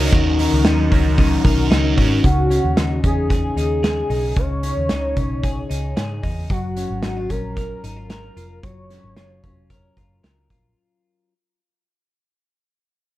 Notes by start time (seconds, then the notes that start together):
Already playing: D#3 C#4 D#4 F#4 A#4 D#5 F#5 C#6
0.11 D#2 D#3 F#3 C#4 F#4 A#4, kick, hi-hat pedal, open hi-hat
0.38 C#4 F#4 A#4, hi-hat pedal, open hi-hat
0.52 C#2
0.64 D#2 F#3 C#4 D#4 F#4 A#4, snare, hi-hat pedal, open hi-hat
0.91 C#2 C#4 F#4 A#4, kick, hi-hat pedal, open hi-hat
1.17 D#3 F#3 C#4 D#4 F#4 A#4, kick, hi-hat pedal, open hi-hat
1.44 B1 C#4 F#4 A#4, kick, hi-hat pedal, open hi-hat
1.70 C#2 F#3 C#4 D#4 F#4 A#4, snare, hi-hat pedal, open hi-hat
1.97 G#2 C#4 F#4 A#4, kick, hi-hat pedal, open hi-hat
2.23 C#2 C#3 F#4, kick, closed hi-hat
2.50 C#4, closed hi-hat
2.64 D#2
2.77 D#2 D#4, snare, closed hi-hat
3.04 E2 C#4 G#4, kick, closed hi-hat
3.30 G#4, kick, closed hi-hat
3.56 D#2 D#4, closed hi-hat
3.83 G#4, snare, closed hi-hat
4.10 B1 D#4, open hi-hat
4.36 C#2 C#3 C#5, kick, closed hi-hat
4.63 C#4, closed hi-hat
4.77 D#2
4.89 C#2 D#4, snare, closed hi-hat
5.17 B1 C#4, kick, closed hi-hat
5.43 G#4, kick, closed hi-hat
5.70 C#2 D#4, closed hi-hat
5.97 G#2 G#4, snare, closed hi-hat
6.23 E2 D#4, kick, open hi-hat
6.50 F#1 F#3 F#4, kick, closed hi-hat
6.77 C#4, closed hi-hat
6.90 G#1
7.03 G#1 D#4, snare, closed hi-hat
7.17 F4
7.29 A#1 C#4 A#4, kick, closed hi-hat
7.57 A#4, kick, closed hi-hat
7.84 G#1 D#4, closed hi-hat
7.96 F4
8.09 A#4, snare, closed hi-hat
8.36 F1 F4, closed hi-hat
8.63 F#1 F#3 C#5, kick, closed hi-hat
8.90 C#4, snare, closed hi-hat
9.04 G#1
9.17 F#1 F4, snare, closed hi-hat
9.44 F1 C#4, kick, closed hi-hat
9.70 A#4, kick, closed hi-hat
9.97 F#1 F4, kick, closed hi-hat
10.23 C#2 A#4, snare, closed hi-hat
10.50 A#1 F4, kick, closed hi-hat